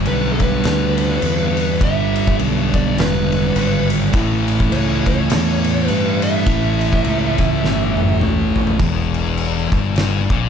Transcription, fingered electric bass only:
0.07 B1
0.65 D2
1.23 E2
1.81 G1
2.39 B1
2.98 E1
3.56 G#1
4.14 A1
4.72 C#2
5.31 E2
5.89 G2
6.46 A1
7.05 C#2
7.64 G1
8.22 A1
8.79 E1
9.72 G1
10.30 A#1

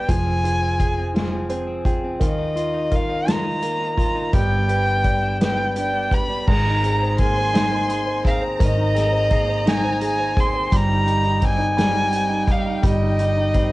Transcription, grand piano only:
Already playing: D4 B4
0.09 F3
0.44 F4
0.80 G#4
1.14 F4
1.49 C4 C5
1.85 F4 G5
2.20 D#3
2.56 F4
2.91 A#4
3.27 F4
3.62 A#3
3.97 F4
4.33 G3
4.69 B4
5.05 D5
5.41 B4
5.77 D4
6.12 B4
6.48 G#3
6.66 D#4
6.84 G#4
7.02 C5
7.20 G#4
7.37 C5
7.54 D#4
7.71 C5
7.88 G#4
8.06 C5
8.24 G#4
8.41 C5
8.59 D#3
8.77 D#4
8.95 G#4
9.12 C5
9.30 G#4
9.48 C5
9.66 D#4
9.84 C5
10.01 G#4
10.19 C5
10.37 G#4
10.54 C5
10.72 G3
10.89 D#4
11.06 G3
11.25 D#4
11.41 G3
11.58 D#4
11.77 G3
11.94 D#4
12.12 G3
12.29 D#4
12.47 G3
12.65 D#4
12.84 G3
13.02 D#4
13.20 G3
13.36 D#4
13.55 G3

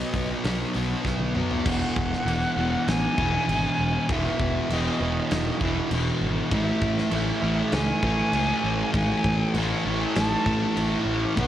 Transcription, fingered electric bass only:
0.13 B1
0.44 B1
0.75 B1
1.04 B1
1.65 E1
1.97 E1
2.25 E1
2.56 E1
2.87 A1
3.18 E1
3.47 G#1
3.78 E1
4.09 E1
4.39 E1
4.70 E1
5.00 E1
5.31 E1
5.61 E1
5.91 E1
6.21 G#1
6.51 A1
6.82 A1
7.12 A1
7.42 A1
7.72 C#2
8.02 A1
8.33 C#2
8.63 A1
8.94 A1
9.24 A1
9.54 A1
9.85 A1
10.16 A1
10.46 A1
10.77 A1
11.05 A1
11.37 B1

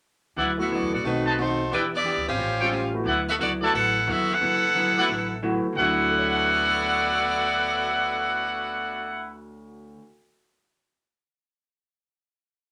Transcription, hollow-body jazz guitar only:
0.37 D3 F#3 B3 E4
0.71 D3 F#3 B3 E4
1.04 B2 D#3 A3 C4
1.38 B2 D#3 A3 C4
1.71 E3 B3 D4 G4
2.04 E3 B3 D4 G4
2.37 A2 G3 C#4 F4
2.71 A2 G3 C#4 F4
3.04 D3 F#3 B3 E4
3.38 D3 F#3 B3 E4
3.72 D3 F#3 B3 E4
4.07 D3 F#3 B3 E4
4.41 D3 F#3 B3 E4
4.75 D3 F#3 B3 E4
5.09 D3 F#3 B3 E4
5.42 D3 F#3 B3 E4
5.73 D3
5.79 F#3 B3
5.87 E4

